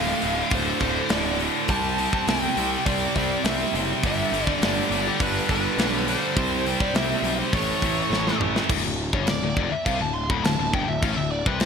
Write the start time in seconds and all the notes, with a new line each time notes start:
Already playing: D1 D2 A2 D3 F5
0.22 D1 D2 A2 D3, open hi-hat
0.50 D1 D2 A2 D3, kick, open hi-hat
0.55 C5
0.80 D1 D2 A2 D3 C5, kick, open hi-hat
1.09 D1 D2 A2 D3 D5, snare, open hi-hat
1.39 D2 A2 D3, open hi-hat
1.68 C2 C3 G3 C4 A5, kick, open hi-hat
1.98 C3 G3 C4, open hi-hat
2.13 kick
2.27 C2 C3 G3 C4 G5, snare, open hi-hat
2.57 C2 C3 G3 C4, open hi-hat
2.86 C2 C3 G3 C4 D5, kick, open hi-hat
3.16 C2 C3 G3 C4 D5, kick, open hi-hat
3.44 C2 C3 G3 C4 E5, snare, open hi-hat
3.73 F#1 C3 G3 C4, open hi-hat
4.03 G1 G2 D3 G3 E5, kick, open hi-hat
4.32 G1 G2 D3 G3, open hi-hat
4.47 D5, kick
4.61 G1 G2 D3 G3 D5, snare, open hi-hat
4.90 G1 G2 D3 G3, open hi-hat
5.08 G4
5.20 G1 G2 D3 G3 B4, kick, open hi-hat
5.49 G1 G2 D3 G3 B4, kick, open hi-hat
5.78 B1 G2 D3 G3, snare, open hi-hat
6.08 G2 D3 G3 C5, open hi-hat
6.37 C2 C3 G3 C4, kick, open hi-hat
6.66 C3 G3 C4, open hi-hat
6.80 D5, kick
6.94 C2 C3 G3 C4 E5, snare, open hi-hat
7.22 B1 C3 G3 C4, open hi-hat
7.39 C5
7.53 A1 A2 E3 A3 C#5, kick, open hi-hat
7.82 A1 A2 E3 A3, kick, open hi-hat
8.10 A1 A2 E3 A3, snare
8.27 snare
8.39 A1 A2 E3 A3, mid tom
8.56 snare
8.69 D1 D2, kick, crash
8.84 D1 D2
9.13 G1 G2 C#5, kick
9.27 D1 D2 D5, snare, crash
9.42 D1 D2
9.57 F1 F2, kick
9.72 E5, muted picked electric bass stroke, muted distorted electric guitar stroke
9.86 C2 C3 F5, kick, crash
10.00 D1 D2 A5
10.14 C6
10.30 D1 D2 B5, kick
10.44 D1 D2 A5, snare, crash
10.58 D1 D2
10.73 G1 G2 G5, kick
10.88 D1 D2 E5
11.02 A1 A2 F5, kick, crash
11.16 D1 D2 E5
11.31 D5
11.46 C2 C3 B4, kick
11.60 C5, snare, crash